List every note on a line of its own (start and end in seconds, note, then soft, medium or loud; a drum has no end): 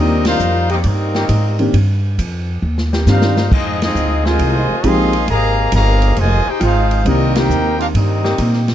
0.00 0.39 D#2 loud
0.00 0.19 C3 medium
0.00 0.37 D#3 medium
0.00 0.25 G3 medium
0.00 0.19 A#3 medium
0.00 0.25 A#3 medium
0.00 0.37 A#3 medium
0.00 0.19 C4 medium
0.00 0.27 C4 medium
0.00 0.38 C4 medium
0.00 0.38 D4 medium
0.00 0.26 D#4 medium
0.00 0.19 F4 loud
0.00 0.27 G4 medium
0.00 0.38 G4 medium
0.00 0.26 A#4 medium
0.00 0.27 D#5 loud
0.25 0.68 G3 medium
0.25 0.67 A#3 medium
0.25 0.68 D#4 medium
0.25 0.67 F4 medium
0.25 0.68 A#4 medium
0.25 0.68 C5 medium
0.25 0.68 F5 loud
0.25 snare medium
0.25 ride medium
0.40 0.83 F2 medium
0.40 hi-hat pedal medium
0.70 0.80 D#3 loud
0.70 0.75 G3 medium
0.70 0.74 A#3 medium
0.70 0.80 A#3 loud
0.70 0.81 C4 medium
0.70 0.76 C4 medium
0.70 0.75 D#4 medium
0.70 0.80 G4 loud
0.70 0.76 G4 medium
0.70 0.76 A#4 medium
0.70 0.76 D#5 medium
0.70 ride medium
0.81 1.28 G2 medium
0.81 0.85 D5 medium
0.81 kick soft
0.81 ride medium
0.86 1.60 G3 medium
0.86 1.60 A#3 medium
0.86 1.60 C4 medium
0.86 1.60 D#4 medium
0.86 1.60 G4 medium
0.86 1.60 A#4 medium
0.86 1.60 D#5 medium
1.15 1.25 D#3 loud
1.15 1.25 A#3 loud
1.15 1.25 C4 loud
1.15 1.25 G4 loud
1.15 snare medium
1.29 1.72 G#2 medium
1.29 kick soft
1.29 hi-hat pedal medium
1.29 ride medium
1.59 1.72 D#3 medium
1.59 1.73 A#3 medium
1.59 1.73 C4 medium
1.59 1.73 D4 medium
1.59 1.73 G4 medium
1.59 ride medium
1.73 2.17 G2 medium
1.73 kick soft
1.73 ride medium
2.18 2.61 F2 loud
2.18 kick soft
2.18 hi-hat pedal medium
2.18 ride medium
2.62 3.06 D#2 medium
2.78 snare medium
2.93 3.49 D#3 medium
2.93 3.49 A#3 medium
2.93 3.49 C4 medium
2.93 3.49 G4 loud
2.93 snare medium
3.06 3.50 G2 medium
3.06 3.34 D#3 medium
3.06 3.49 G3 medium
3.06 3.34 A#3 medium
3.06 3.48 A#3 medium
3.06 3.34 C4 medium
3.06 3.35 D4 medium
3.06 3.49 D#4 medium
3.06 3.49 F4 medium
3.06 3.35 G4 medium
3.06 3.49 A#4 medium
3.06 3.49 C5 medium
3.06 3.49 F5 medium
3.06 snare medium
3.06 hi-hat pedal medium
3.22 snare medium
3.37 snare loud
3.50 3.94 F2 medium
3.50 3.80 G#3 medium
3.50 3.80 C4 medium
3.50 3.82 C4 medium
3.50 3.80 D#4 medium
3.50 3.82 F4 medium
3.50 3.82 G#4 medium
3.50 3.82 D#5 medium
3.50 kick medium
3.50 crash medium
3.81 4.22 G#3 medium
3.81 4.23 C4 medium
3.81 4.24 C4 medium
3.81 4.22 D#4 medium
3.81 4.23 F4 medium
3.81 4.24 G#4 medium
3.81 4.23 D#5 loud
3.81 snare medium
3.81 ride medium
3.95 4.38 D2 loud
3.95 hi-hat pedal medium
4.25 4.84 C3 medium
4.25 4.83 D#3 medium
4.25 4.81 D#3 loud
4.25 4.81 G#3 loud
4.25 4.83 G#3 medium
4.25 4.81 C4 loud
4.25 4.81 F4 loud
4.25 4.85 F4 medium
4.25 4.84 C5 medium
4.25 4.85 D#5 medium
4.25 4.85 G#5 loud
4.25 snare medium
4.39 4.67 C2 medium
4.39 kick soft
4.39 ride medium
4.70 muted upright bass stroke soft
4.84 5.27 A#1 medium
4.84 5.28 D#3 loud
4.84 5.11 F3 medium
4.84 5.29 G#3 medium
4.84 5.11 G#3 medium
4.84 5.29 C4 loud
4.84 5.11 C4 medium
4.84 5.12 D#4 medium
4.84 5.12 G4 medium
4.84 5.28 G#4 medium
4.84 5.29 D#5 loud
4.84 5.29 F5 loud
4.84 5.30 C6 loud
4.84 kick soft
4.84 hi-hat pedal medium
4.84 ride medium
5.13 ride medium
5.28 5.71 G#1 loud
5.28 5.70 C3 loud
5.28 5.70 D#3 medium
5.28 5.70 A#3 loud
5.28 5.70 G#4 loud
5.28 5.71 D#5 medium
5.28 5.71 F5 medium
5.28 5.70 A#5 loud
5.28 kick soft
5.28 ride medium
5.72 6.16 G1 loud
5.72 6.15 C3 loud
5.72 6.15 D#3 medium
5.72 6.15 A#3 loud
5.72 6.16 G#4 medium
5.72 6.15 D#5 medium
5.72 6.15 F5 medium
5.72 6.15 A#5 loud
5.72 kick soft
5.72 hi-hat pedal medium
5.72 ride medium
6.02 ride medium
6.17 6.45 F1 medium
6.17 6.47 C3 medium
6.17 6.47 D#3 loud
6.17 6.47 G#3 medium
6.17 6.48 F4 medium
6.17 6.47 C5 medium
6.17 6.48 D#5 medium
6.17 6.48 G#5 loud
6.17 kick soft
6.17 ride medium
6.46 6.63 D#4 medium
6.46 6.61 G4 medium
6.46 6.63 G#4 medium
6.46 6.62 C5 medium
6.46 6.63 G5 loud
6.46 muted upright bass stroke soft
6.60 7.04 G#1 loud
6.60 6.81 D#3 loud
6.60 6.81 G#3 medium
6.60 7.03 G#3 medium
6.60 6.81 C4 medium
6.60 7.02 C4 medium
6.60 6.81 F4 loud
6.60 7.02 F4 medium
6.60 kick soft
6.60 hi-hat pedal medium
6.60 ride medium
6.64 7.04 D#4 medium
6.64 7.04 G#4 medium
6.64 7.04 C5 medium
6.64 7.05 F5 loud
6.91 ride medium
7.05 7.49 C2 medium
7.05 8.30 D#3 medium
7.05 7.36 G3 medium
7.05 7.33 A#3 medium
7.05 8.30 A#3 medium
7.05 8.30 C4 medium
7.05 7.33 D#4 medium
7.05 8.31 D#4 medium
7.05 8.31 G4 medium
7.05 7.37 G4 medium
7.05 7.37 D#5 loud
7.05 kick soft
7.05 ride medium
7.09 7.37 C4 medium
7.09 7.36 A#4 medium
7.34 7.80 A#3 medium
7.34 7.80 D#4 medium
7.34 7.81 D#4 medium
7.34 7.80 G4 medium
7.34 7.79 A#4 loud
7.34 7.81 C5 medium
7.34 7.81 G5 loud
7.34 snare medium
7.34 ride medium
7.49 7.93 D#2 loud
7.49 hi-hat pedal medium
7.78 7.87 D4 medium
7.78 7.85 F4 medium
7.78 7.87 G4 medium
7.78 7.87 A#4 medium
7.78 7.87 F5 medium
7.78 ride medium
7.93 8.38 G2 loud
7.93 8.65 G3 medium
7.93 8.65 A#3 medium
7.93 8.66 C4 medium
7.93 8.65 D#4 medium
7.93 8.66 G4 medium
7.93 8.66 A#4 medium
7.93 8.66 D#5 medium
7.93 kick soft
7.93 ride medium
8.24 8.75 D#3 loud
8.24 8.75 A#3 medium
8.24 8.75 C4 loud
8.24 8.75 G4 loud
8.24 snare medium
8.38 8.75 A#2 loud
8.38 kick soft
8.38 hi-hat pedal medium
8.38 ride medium
8.53 snare soft
8.68 snare medium
8.68 ride medium